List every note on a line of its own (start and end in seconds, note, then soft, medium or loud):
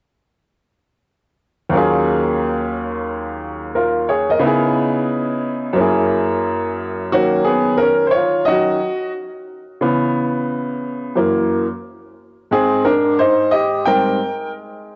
1.69 4.37 D#2 medium
1.69 4.38 F#3 medium
1.69 4.38 A#3 medium
1.74 4.39 C#4 medium
1.74 3.72 F4 medium
1.74 3.73 G#4 medium
3.75 4.07 F4 soft
3.75 4.07 A#4 medium
4.09 4.29 G#4 medium
4.09 4.28 C#5 medium
4.30 4.62 A#4 soft
4.30 4.62 D#5 medium
4.39 5.73 C#3 medium
4.39 5.74 B3 medium
4.39 5.75 D#4 medium
4.45 5.76 E4 medium
4.45 5.77 G#4 medium
5.73 7.07 F#2 medium
5.73 7.09 A#3 medium
5.77 7.09 C#4 medium
5.77 7.10 E4 medium
5.77 7.11 G#4 medium
7.12 8.45 D#3 medium
7.12 8.46 F#3 soft
7.12 7.45 A#3 medium
7.12 7.79 C#4 medium
7.12 7.47 F#4 medium
7.44 7.78 B3 medium
7.44 7.80 G#4 medium
7.77 8.07 C#4 medium
7.77 8.05 A#4 medium
8.07 8.13 C5 medium
8.11 8.45 F4 medium
8.11 8.47 C#5 medium
8.45 8.77 D#3 soft
8.45 8.77 F#3 soft
8.45 8.78 C#4 soft
8.45 9.11 F#4 medium
8.45 9.09 D#5 medium
9.81 11.12 C#3 medium
9.81 11.12 E3 soft
9.81 11.13 B3 medium
11.15 11.64 F#2 soft
11.15 11.64 E3 soft
11.15 11.64 A#3 medium
12.51 13.85 G#2 medium
12.51 14.96 G#3 medium
12.51 12.83 C4 medium
12.51 12.83 G#4 medium
12.85 13.17 D4 medium
12.85 13.16 A#4 medium
13.19 13.51 D#4 medium
13.19 13.50 C5 medium
13.51 13.84 G4 medium
13.51 13.87 D#5 medium
13.86 14.17 G#2 soft
13.86 14.17 G3 soft
13.86 14.17 C4 medium
13.86 14.50 A#4 medium
13.86 14.49 G5 medium